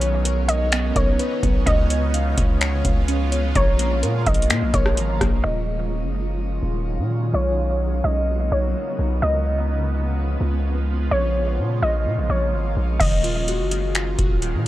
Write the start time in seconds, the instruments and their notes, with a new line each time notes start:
Already playing: 808-style bass B1, ambient pad C#3 F#3 B3 C#4 D#4, synth keys B4, synth pluck C#5
0.01 synth keys B3, closed hi-hat
0.25 synth keys A#4, closed hi-hat
0.48 synth pluck D#5, closed hi-hat
0.72 synth keys B3, finger snap, closed hi-hat
0.96 808-style bass B1, synth keys A#4, synth pluck C#5, kick, closed hi-hat
1.19 synth keys B4, closed hi-hat
1.43 808-style bass B1, synth keys B3, kick, closed hi-hat
1.66 808-style bass C#2, ambient pad F3 G#3 F4, synth keys C#4, synth pluck D#5, kick, closed hi-hat
1.90 synth keys C#5, closed hi-hat
2.14 synth keys F5, closed hi-hat
2.37 808-style bass C#2, synth keys C#4, kick, closed hi-hat
2.61 synth keys C#5, finger snap, closed hi-hat
2.84 808-style bass C#2, synth keys F5, kick, closed hi-hat
3.08 synth keys C#4, closed hi-hat
3.32 synth keys C#5, closed hi-hat
3.55 808-style bass A#1, ambient pad F3 A#3, synth pluck C#5, synth keys A#5, kick, closed hi-hat
3.79 synth keys A#3, closed hi-hat
4.03 808-style bass A#2, synth keys A#4, closed hi-hat
4.26 808-style bass A#1, synth pluck D#5, kick, closed hi-hat
4.34 closed hi-hat
4.42 closed hi-hat
4.50 808-style bass A#2, synth keys A#3, finger snap, closed hi-hat
4.62 808-style bass A#1
4.74 808-style bass A#1, synth keys A#4, synth pluck C#5, kick, closed hi-hat
4.86 cross-stick
4.97 808-style bass G#1, synth keys A#5, closed hi-hat
5.21 808-style bass A#1, synth keys A#3, kick, cross-stick, closed hi-hat
5.44 808-style bass D#1, ambient pad D#3 F#3 G#3 C#4 F4, synth pluck D#5
6.04 808-style bass F#1
6.63 808-style bass D#1
6.98 808-style bass A#2
7.33 808-style bass B1, ambient pad C#3 A#3 B3 D#4, synth pluck C#5
8.04 808-style bass B1, synth pluck D#5
8.52 808-style bass B1, synth pluck C#5
8.99 808-style bass B1
9.22 808-style bass C#2, ambient pad F3 G#3 F4, synth pluck D#5
10.41 808-style bass C#2
11.11 808-style bass A#1, ambient pad G#3 A#3 F4, synth pluck C#5
11.59 808-style bass A#2
11.82 808-style bass A#1, synth pluck D#5
12.06 808-style bass A#2
12.18 808-style bass A#1
12.30 808-style bass A#1, synth pluck C#5
12.53 808-style bass G#1
12.77 808-style bass A#1
13.00 808-style bass D#1, ambient pad D#3 F#3 G#3 C#4 F5, synth keys D#3, synth pluck D#5, kick, closed hi-hat, crash
13.24 synth keys F4, closed hi-hat
13.48 synth keys F#4, closed hi-hat
13.59 808-style bass F#1
13.71 synth keys D#3, closed hi-hat
13.95 synth keys F4, finger snap, closed hi-hat
14.19 808-style bass D#1, synth keys F#4, kick, closed hi-hat
14.42 synth keys D#3, closed hi-hat
14.54 808-style bass A#2